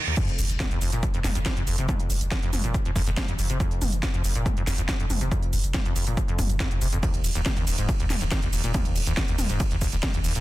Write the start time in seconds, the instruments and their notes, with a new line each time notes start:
Already playing: reverse cymbal
0.07 acid bass D#2
0.17 acid bass F2, kick, closed hi-hat, crash, sub drop, shaker
0.28 sub bass F1, closed hi-hat
0.39 sub bass F1, acid bass G#2, open hi-hat, shaker
0.50 sub bass F1, closed hi-hat, shaker
0.60 acid bass F3, kick, snare, closed hi-hat, mid tom, shaker
0.71 acid bass F2, closed hi-hat
0.81 sub bass F1, acid bass F2, open hi-hat, shaker
0.92 sub bass F1, acid bass A#2, closed hi-hat, shaker
1.03 acid bass F2, kick, closed hi-hat, shaker
1.14 sub bass F1, acid bass F2, closed hi-hat
1.24 sub bass F1, acid bass F2, snare, open hi-hat, mid tom, shaker
1.35 sub bass F1, acid bass F2, closed hi-hat, shaker
1.46 acid bass F3, kick, snare, closed hi-hat, shaker
1.57 sub bass F1, acid bass F2, closed hi-hat
1.67 sub bass F1, acid bass F2, open hi-hat, shaker
1.78 sub bass F1, acid bass C3, closed hi-hat, shaker
1.89 acid bass F2, kick, closed hi-hat, mid tom, shaker
2.00 sub bass F1, closed hi-hat
2.10 sub bass F1, acid bass G#2, open hi-hat, shaker
2.21 sub bass F1, closed hi-hat, shaker
2.31 acid bass F3, kick, snare, closed hi-hat, shaker
2.42 acid bass F2, closed hi-hat
2.53 sub bass F1, acid bass F2, open hi-hat, mid tom, shaker
2.64 sub bass F1, acid bass A#2, closed hi-hat, shaker
2.74 acid bass F2, kick, closed hi-hat, shaker
2.85 sub bass F1, acid bass F2, closed hi-hat
2.96 sub bass F1, acid bass F2, kick, open hi-hat, shaker
3.07 sub bass F1, acid bass F2, closed hi-hat, shaker
3.17 acid bass F3, kick, snare, closed hi-hat, mid tom, shaker
3.28 sub bass F1, acid bass F2, closed hi-hat
3.39 sub bass F1, acid bass F2, open hi-hat, shaker
3.50 sub bass F1, acid bass C3, closed hi-hat, shaker
3.60 acid bass F2, kick, closed hi-hat, shaker
3.71 sub bass F1, closed hi-hat
3.82 sub bass F1, acid bass G#2, open hi-hat, mid tom, shaker
3.92 sub bass F1, closed hi-hat, shaker
4.03 acid bass F3, kick, snare, closed hi-hat, shaker
4.14 acid bass F2, closed hi-hat
4.24 sub bass F1, acid bass F2, open hi-hat, shaker
4.35 sub bass F1, acid bass A#2, closed hi-hat, shaker
4.46 acid bass F2, kick, closed hi-hat, mid tom, shaker
4.57 sub bass F1, acid bass F2, closed hi-hat
4.67 sub bass F1, acid bass F2, snare, open hi-hat, shaker
4.78 sub bass F1, acid bass F2, closed hi-hat, shaker
4.89 acid bass F3, kick, snare, closed hi-hat, shaker
5.00 sub bass F1, acid bass F2, closed hi-hat
5.10 sub bass F1, acid bass F2, open hi-hat, mid tom, shaker
5.21 sub bass F1, acid bass C3, closed hi-hat, shaker
5.31 acid bass F2, kick, closed hi-hat, shaker
5.43 sub bass F1, closed hi-hat
5.53 sub bass F1, acid bass G#2, open hi-hat, shaker
5.64 sub bass F1, closed hi-hat, shaker
5.74 acid bass F3, kick, snare, closed hi-hat, mid tom, shaker
5.85 acid bass F2, closed hi-hat
5.96 sub bass F1, acid bass F2, open hi-hat, shaker
6.07 sub bass F1, acid bass A#2, closed hi-hat, shaker
6.17 acid bass F2, kick, closed hi-hat, shaker
6.28 sub bass F1, acid bass F2, closed hi-hat
6.39 sub bass F1, acid bass F#2, kick, open hi-hat, mid tom, shaker
6.50 sub bass F1, acid bass G#2, closed hi-hat, shaker
6.60 acid bass F2, kick, snare, closed hi-hat, shaker
6.71 sub bass F1, acid bass F2, closed hi-hat
6.81 sub bass F1, acid bass C3, open hi-hat, shaker
6.92 sub bass F1, acid bass F2, closed hi-hat, shaker
7.03 acid bass D#2, kick, closed hi-hat, ride, shaker
7.14 sub bass D#1, closed hi-hat, ride
7.24 sub bass D#1, acid bass F#2, open hi-hat, ride, shaker
7.35 sub bass D#1, acid bass D#2, closed hi-hat, ride, shaker
7.46 acid bass D#3, kick, snare, closed hi-hat, mid tom, ride, shaker
7.57 acid bass D#2, closed hi-hat, ride
7.67 sub bass D#1, acid bass D#2, open hi-hat, ride, shaker
7.78 sub bass D#1, acid bass G#2, closed hi-hat, ride, shaker
7.89 acid bass D#2, kick, closed hi-hat, ride, shaker
8.00 sub bass D#1, acid bass D#2, closed hi-hat, ride
8.10 sub bass D#1, acid bass D#2, snare, open hi-hat, mid tom, ride, shaker
8.21 sub bass D#1, acid bass D#2, closed hi-hat, ride, shaker
8.31 acid bass D#3, kick, snare, closed hi-hat, ride, shaker
8.42 sub bass D#1, acid bass D#2, closed hi-hat, ride
8.53 sub bass D#1, acid bass D#2, open hi-hat, ride, shaker
8.64 sub bass D#1, acid bass A#2, closed hi-hat, ride, shaker
8.74 acid bass D#2, kick, closed hi-hat, mid tom, ride, shaker
8.85 sub bass D#1, closed hi-hat, ride
8.96 sub bass D#1, acid bass F#2, open hi-hat, ride, shaker
9.07 sub bass D#1, acid bass D#2, closed hi-hat, ride, shaker
9.17 kick, snare, closed hi-hat, ride, shaker
9.28 acid bass D#2, closed hi-hat, ride
9.38 sub bass D#1, acid bass D#2, open hi-hat, mid tom, ride, shaker
9.49 sub bass D#1, acid bass G#2, closed hi-hat, ride, shaker
9.60 acid bass D#2, kick, closed hi-hat, ride, shaker
9.71 sub bass D#1, acid bass D#2, closed hi-hat, ride
9.81 sub bass D#1, acid bass D#2, kick, open hi-hat, ride, shaker
9.92 sub bass D#1, acid bass D#2, closed hi-hat, ride, shaker
10.03 acid bass D#3, kick, snare, closed hi-hat, mid tom, ride, shaker
10.14 sub bass D#1, acid bass D#2, closed hi-hat, ride
10.24 sub bass D#1, acid bass D#2, open hi-hat, ride, shaker
10.35 sub bass D#1, acid bass A#2, closed hi-hat, ride, shaker